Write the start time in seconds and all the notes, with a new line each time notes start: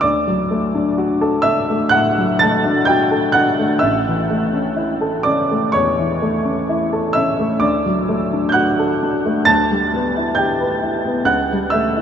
0.01 D2 D5 D6
0.27 F#3
0.51 A3
0.75 D4
0.98 F#4
1.21 A4
1.42 D4 E5 E6
1.70 A3
1.89 F#5 F#6
1.93 A2
2.18 F#3
2.39 A3 A5 A6
2.66 D4
2.85 G5 G6
2.89 F#4
3.11 A4
3.32 D4 F#5 F#6
3.59 A3
3.79 E5 E6
3.83 A1
4.08 E3
4.30 A3
4.53 C#4
4.76 E4
5.01 A4
5.23 C#4 D5 D6
5.52 A3
5.72 E2 C#5 C#6
5.98 E3
6.22 A3
6.45 C#4
6.69 E4
6.93 A4
7.13 C#4 E5 E6
7.39 A3
7.60 D2 D5 D6
7.86 F#3
8.09 A3
8.33 D4
8.49 F#6 G6
8.53 F#4 F#5
8.79 A4
9.03 D4
9.26 A3
9.45 D2 A5 A6
9.71 G3
9.94 B3
10.17 E4
10.35 G4 G5 G6
10.60 B4
10.82 E4
11.05 B3
11.25 C#2 F#5 F#6
11.52 G3
11.70 A3 E5 E6
11.97 E4